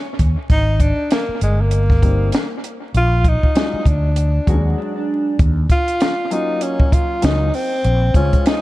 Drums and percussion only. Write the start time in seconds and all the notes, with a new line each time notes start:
0.19 kick, closed hi-hat
0.50 kick, closed hi-hat
0.80 kick, closed hi-hat
1.11 snare, closed hi-hat
1.41 closed hi-hat
1.71 closed hi-hat
1.90 kick, snare
2.02 kick, closed hi-hat
2.32 snare, closed hi-hat
2.64 closed hi-hat
2.95 closed hi-hat
3.24 kick, closed hi-hat
3.43 kick
3.55 snare, closed hi-hat
3.85 kick, closed hi-hat
4.16 closed hi-hat
4.47 kick, closed hi-hat
5.39 kick, closed hi-hat
5.69 kick, closed hi-hat
5.88 closed hi-hat
6.00 snare, closed hi-hat
6.31 closed hi-hat
6.61 closed hi-hat
6.80 kick
6.92 kick, closed hi-hat
7.22 snare, closed hi-hat
7.54 open hi-hat
7.84 closed hi-hat
8.14 kick, closed hi-hat
8.33 kick, closed hi-hat
8.46 snare, closed hi-hat